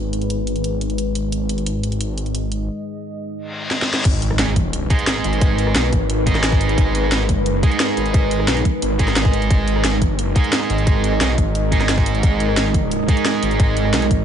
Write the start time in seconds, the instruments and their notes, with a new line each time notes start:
Already playing: detuned saw bass G#1, ambient pad G#3 D#4 G#4 B4
0.13 closed hi-hat
0.22 closed hi-hat
0.30 closed hi-hat
0.47 closed hi-hat
0.56 closed hi-hat
0.64 closed hi-hat
0.81 closed hi-hat
0.90 closed hi-hat
0.98 closed hi-hat
1.15 closed hi-hat
1.32 ambient pad D#5, closed hi-hat
1.49 closed hi-hat
1.58 closed hi-hat
1.66 closed hi-hat
1.83 closed hi-hat
1.92 closed hi-hat
2.01 closed hi-hat
2.18 closed hi-hat
2.26 closed hi-hat
2.35 closed hi-hat
2.52 closed hi-hat
3.37 reverse cymbal
3.71 snare
3.82 snare
3.94 snare
4.05 detuned saw bass G#1, ambient pad G#3 D#4 A#4 B4, kick, closed hi-hat, crash, impact
4.22 closed hi-hat
4.31 cross-stick
4.39 distorted electric guitar G#3 D#4 G#4, snare, closed hi-hat
4.56 kick, closed hi-hat
4.73 closed hi-hat
4.90 distorted electric guitar G#3 D#4 G#4, kick, closed hi-hat
4.99 closed hi-hat
5.07 snare, closed hi-hat
5.16 cross-stick
5.24 detuned saw bass G#1, closed hi-hat
5.33 closed hi-hat
5.41 kick, closed hi-hat
5.58 closed hi-hat
5.67 cross-stick
5.75 detuned saw bass B1, distorted electric guitar G#3 D#4 G#4, snare, closed hi-hat
5.93 detuned saw bass G#1, kick, closed hi-hat
6.10 closed hi-hat
6.26 distorted electric guitar G#3 D#4 G#4, kick, closed hi-hat
6.35 cross-stick, snare, closed hi-hat
6.44 snare, closed hi-hat
6.52 kick
6.61 closed hi-hat
6.69 closed hi-hat
6.78 detuned saw bass G#1, kick, closed hi-hat
6.95 closed hi-hat
7.03 cross-stick
7.12 distorted electric guitar G#3 D#4 G#4, snare, closed hi-hat
7.29 kick, closed hi-hat
7.37 detuned saw bass G1
7.46 closed hi-hat
7.63 distorted electric guitar G#3 D#4 G#4, kick, closed hi-hat
7.72 closed hi-hat
7.80 snare, closed hi-hat
7.89 cross-stick
7.97 detuned saw bass G#1, closed hi-hat
8.06 closed hi-hat
8.14 kick, closed hi-hat
8.31 closed hi-hat
8.40 cross-stick
8.48 detuned saw bass B1, distorted electric guitar G#3 D#4 G#4, snare, closed hi-hat
8.57 closed hi-hat
8.65 kick, closed hi-hat
8.82 detuned saw bass G#1, closed hi-hat
8.99 distorted electric guitar G#3 D#4 G#4, kick, closed hi-hat
9.08 cross-stick, snare, closed hi-hat
9.16 snare, closed hi-hat
9.25 kick
9.33 closed hi-hat
9.42 closed hi-hat
9.51 detuned saw bass G#1, ambient pad D#5, kick, closed hi-hat
9.68 closed hi-hat
9.76 cross-stick
9.84 distorted electric guitar G#3 D#4 G#4, snare, closed hi-hat
10.02 kick, closed hi-hat
10.10 detuned saw bass G1
10.19 closed hi-hat
10.36 distorted electric guitar G#3 D#4 G#4, kick, closed hi-hat
10.44 closed hi-hat
10.53 snare, closed hi-hat
10.61 cross-stick
10.70 detuned saw bass G#1, closed hi-hat
10.78 closed hi-hat
10.87 kick, closed hi-hat
11.04 closed hi-hat
11.12 cross-stick
11.21 detuned saw bass B1, distorted electric guitar G#3 D#4 G#4, snare, closed hi-hat
11.38 detuned saw bass G#1, kick, closed hi-hat
11.55 closed hi-hat
11.72 distorted electric guitar G#3 D#4 G#4, kick, closed hi-hat
11.81 cross-stick, snare, closed hi-hat
11.89 snare, closed hi-hat
11.98 kick
12.06 closed hi-hat
12.15 closed hi-hat
12.23 detuned saw bass G#1, kick, closed hi-hat
12.40 closed hi-hat
12.49 cross-stick
12.57 distorted electric guitar G#3 D#4 G#4, snare, closed hi-hat
12.74 kick, closed hi-hat
12.91 closed hi-hat
13.08 distorted electric guitar G#3 D#4 G#4, kick, closed hi-hat
13.17 closed hi-hat
13.26 snare, closed hi-hat
13.34 cross-stick
13.43 detuned saw bass G#1, closed hi-hat
13.51 closed hi-hat
13.60 kick, closed hi-hat
13.77 closed hi-hat
13.85 cross-stick
13.94 detuned saw bass B1, distorted electric guitar G#3 D#4 G#4, snare, closed hi-hat
14.02 closed hi-hat
14.11 detuned saw bass G#1, kick, closed hi-hat